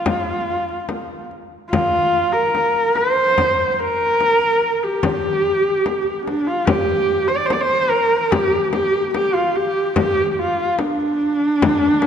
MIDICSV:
0, 0, Header, 1, 3, 480
1, 0, Start_track
1, 0, Tempo, 825309
1, 30, Time_signature, 4, 2, 24, 8
1, 7018, End_track
2, 0, Start_track
2, 0, Title_t, "Horsehead fiddle"
2, 0, Program_c, 0, 110
2, 0, Note_on_c, 0, 65, 78
2, 736, Note_off_c, 0, 65, 0
2, 990, Note_on_c, 0, 65, 98
2, 1352, Note_on_c, 0, 70, 92
2, 1361, Note_off_c, 0, 65, 0
2, 1719, Note_on_c, 0, 72, 98
2, 1728, Note_off_c, 0, 70, 0
2, 2158, Note_off_c, 0, 72, 0
2, 2158, Note_on_c, 0, 72, 66
2, 2205, Note_on_c, 0, 70, 101
2, 2213, Note_off_c, 0, 72, 0
2, 2812, Note_on_c, 0, 67, 82
2, 2821, Note_off_c, 0, 70, 0
2, 3637, Note_off_c, 0, 67, 0
2, 3640, Note_on_c, 0, 62, 79
2, 3763, Note_on_c, 0, 65, 82
2, 3772, Note_off_c, 0, 62, 0
2, 3871, Note_on_c, 0, 67, 101
2, 3880, Note_off_c, 0, 65, 0
2, 4234, Note_on_c, 0, 72, 86
2, 4242, Note_off_c, 0, 67, 0
2, 4286, Note_on_c, 0, 74, 87
2, 4295, Note_off_c, 0, 72, 0
2, 4337, Note_on_c, 0, 72, 83
2, 4346, Note_off_c, 0, 74, 0
2, 4380, Note_on_c, 0, 74, 84
2, 4389, Note_off_c, 0, 72, 0
2, 4426, Note_on_c, 0, 72, 106
2, 4435, Note_off_c, 0, 74, 0
2, 4595, Note_on_c, 0, 70, 100
2, 4604, Note_off_c, 0, 72, 0
2, 4834, Note_on_c, 0, 67, 102
2, 4843, Note_off_c, 0, 70, 0
2, 5076, Note_off_c, 0, 67, 0
2, 5079, Note_on_c, 0, 67, 92
2, 5302, Note_off_c, 0, 67, 0
2, 5317, Note_on_c, 0, 67, 93
2, 5436, Note_on_c, 0, 65, 86
2, 5445, Note_off_c, 0, 67, 0
2, 5560, Note_on_c, 0, 67, 90
2, 5569, Note_off_c, 0, 65, 0
2, 5798, Note_off_c, 0, 67, 0
2, 5801, Note_on_c, 0, 67, 100
2, 5999, Note_off_c, 0, 67, 0
2, 5999, Note_on_c, 0, 67, 58
2, 6044, Note_on_c, 0, 65, 87
2, 6053, Note_off_c, 0, 67, 0
2, 6280, Note_on_c, 0, 62, 100
2, 6288, Note_off_c, 0, 65, 0
2, 7018, Note_off_c, 0, 62, 0
2, 7018, End_track
3, 0, Start_track
3, 0, Title_t, "Frame drum"
3, 34, Note_on_c, 9, 64, 74
3, 92, Note_off_c, 9, 64, 0
3, 399, Note_on_c, 9, 64, 22
3, 458, Note_off_c, 9, 64, 0
3, 516, Note_on_c, 9, 64, 54
3, 574, Note_off_c, 9, 64, 0
3, 763, Note_on_c, 9, 64, 21
3, 821, Note_off_c, 9, 64, 0
3, 1006, Note_on_c, 9, 64, 74
3, 1064, Note_off_c, 9, 64, 0
3, 1481, Note_on_c, 9, 64, 49
3, 1539, Note_off_c, 9, 64, 0
3, 1718, Note_on_c, 9, 64, 45
3, 1776, Note_off_c, 9, 64, 0
3, 1846, Note_on_c, 9, 64, 19
3, 1904, Note_off_c, 9, 64, 0
3, 1964, Note_on_c, 9, 64, 69
3, 2022, Note_off_c, 9, 64, 0
3, 2331, Note_on_c, 9, 64, 20
3, 2389, Note_off_c, 9, 64, 0
3, 2446, Note_on_c, 9, 64, 48
3, 2504, Note_off_c, 9, 64, 0
3, 2687, Note_on_c, 9, 64, 19
3, 2745, Note_off_c, 9, 64, 0
3, 2925, Note_on_c, 9, 64, 73
3, 2984, Note_off_c, 9, 64, 0
3, 3407, Note_on_c, 9, 64, 55
3, 3466, Note_off_c, 9, 64, 0
3, 3650, Note_on_c, 9, 64, 46
3, 3708, Note_off_c, 9, 64, 0
3, 3767, Note_on_c, 9, 64, 22
3, 3825, Note_off_c, 9, 64, 0
3, 3881, Note_on_c, 9, 64, 83
3, 3939, Note_off_c, 9, 64, 0
3, 4128, Note_on_c, 9, 64, 26
3, 4186, Note_off_c, 9, 64, 0
3, 4364, Note_on_c, 9, 64, 65
3, 4422, Note_off_c, 9, 64, 0
3, 4604, Note_on_c, 9, 64, 23
3, 4662, Note_off_c, 9, 64, 0
3, 4839, Note_on_c, 9, 64, 81
3, 4897, Note_off_c, 9, 64, 0
3, 5076, Note_on_c, 9, 64, 58
3, 5134, Note_off_c, 9, 64, 0
3, 5319, Note_on_c, 9, 64, 58
3, 5377, Note_off_c, 9, 64, 0
3, 5556, Note_on_c, 9, 64, 23
3, 5614, Note_off_c, 9, 64, 0
3, 5792, Note_on_c, 9, 64, 78
3, 5850, Note_off_c, 9, 64, 0
3, 6035, Note_on_c, 9, 64, 25
3, 6093, Note_off_c, 9, 64, 0
3, 6273, Note_on_c, 9, 64, 55
3, 6331, Note_off_c, 9, 64, 0
3, 6523, Note_on_c, 9, 64, 23
3, 6581, Note_off_c, 9, 64, 0
3, 6760, Note_on_c, 9, 64, 86
3, 6818, Note_off_c, 9, 64, 0
3, 6991, Note_on_c, 9, 64, 59
3, 7018, Note_off_c, 9, 64, 0
3, 7018, End_track
0, 0, End_of_file